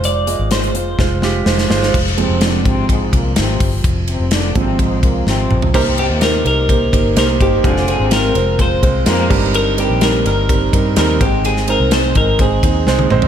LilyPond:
<<
  \new Staff \with { instrumentName = "Clean electric guitar" } { \time 4/4 \key f \dorian \tempo 4 = 126 d''4 c''4. r4. | r1 | r1 | bes'8 g'8 bes'8 bes'4. bes'8 g'8 |
aes'8 aes'8 bes'4 c''4. r8 | bes'8 g'8 bes'8 bes'4. bes'8 g'8 | aes'8 bes'8 c''8 bes'8 aes'4. r8 | }
  \new Staff \with { instrumentName = "Grand piano" } { \time 4/4 \key f \dorian <aes f' c''>8 <aes f' ees''>8 <aes f' c''>8 <aes f' c''>8 <aes f' c''>8 <aes f' g'>8 <aes f' c''>8 <aes f' c''>8 | r1 | r1 | <bes ees' g' c''>8 <bes ees' g' c''>8 <bes ees' g' c''>8 <bes ees' g' c''>8 <bes ees' g' c''>8 <bes ees' g' c''>8 <bes ees' g' c''>8 <bes ees' g' c''>8 |
<aes c' f' c''>8 <aes c' f' c''>8 <aes c' f' bes'>8 <aes c' f' c''>8 <aes c' f' c''>8 <aes c' f' c''>8 <aes c' f' bes'>8 <g c' d' ees' bes'>8~ | <g c' d' ees' bes'>8 <g c' ees' bes'>8 <g c' ees' bes'>8 <g c' ees' bes'>8 <g c' ees' bes'>8 <g c' ees' bes'>8 <g c' ees' bes'>8 <aes c' ees' c''>8~ | <aes c' ees' c''>8 <aes c' ees' c''>8 <aes c' ees' aes'>8 <aes c' ees' ees''>8 <aes c' ees' c''>8 <aes c' ees' c''>8 <aes c' ees' c''>8 <aes c' ees' c''>8 | }
  \new Staff \with { instrumentName = "Grand piano" } { \clef bass \time 4/4 \key f \dorian r1 | r8 <f aes c'>4. r2 | r4. <f aes c'>4. r4 | c4. r2 r8 |
r2. r8 g,8~ | g,4 r2 r8 aes,8~ | aes,4 r2. | }
  \new Staff \with { instrumentName = "French horn section" } { \clef bass \time 4/4 \key f \dorian r1 | r8 <c c'>8 <d d'>8 <c c'>8 <aes, aes>8 <bes, bes>8 <c c'>8. r16 | r8 <c c'>8 <d d'>8 <c c'>8 <aes, aes>8 <bes, bes>8 <c c'>8. r16 | <c c'>8. <bes, bes>8. r2 r8 |
<d d'>8. <c c'>8. r4. <bes, bes>8. r16 | r1 | r1 | }
  \new Staff \with { instrumentName = "Fingered electric bass" } { \clef bass \time 4/4 \key f \dorian f,,8. aes,,8. f,,8 f,,4 f,,8 g,,8 | f,,8. f,,8. aes,,4 c,8 aes,,8 g,,8 | f,,8. f,,8. aes,,4 c,8 aes,,8 bes,,8 | c,8. ees,8. c,4 g,,8 c,8 g,,8 |
f,,8. aes,,8. f,,4 c,8 f,8 g,,8~ | g,,8. bes,,8. g,,4 g,8 ees,8 aes,,8~ | aes,,8. c,8. aes,,4 ees,8 c,8 bes,,8 | }
  \new DrumStaff \with { instrumentName = "Drums" } \drummode { \time 4/4 hh8 hh8 <hh sn>16 hh16 hh8 <bd sn>8 sn8 sn16 sn16 sn16 sn16 | <cymc bd>16 sn16 cymr8 <cymr sn>8 <bd cymr>8 <bd cymr>8 <bd cymr>8 <cymr sn>8 <hho bd cymr>8 | <hhp bd cymr>8 cymr8 <cymr sn>8 <bd cymr>8 <bd cymr>8 <bd cymr>8 sn8 toml16 tomfh16 | <cymc bd>8 cymr8 <cymr sn>8 cymr8 <bd cymr>8 <bd cymr>8 <cymr sn>8 <bd cymr>8 |
<bd cymr>16 sn16 cymr8 <cymr sn>8 cymr8 <bd cymr>8 <bd cymr>8 <cymr sn>8 <cymc bd>8 | cymr8 cymr8 <cymr sn>8 cymr8 <bd cymr>8 <bd cymr>8 <cymr sn>8 <bd cymr>8 | cymr16 sn16 cymr8 <cymr sn>8 <bd cymr>8 <bd cymr>8 <bd cymr>8 sn16 tommh16 toml16 tomfh16 | }
>>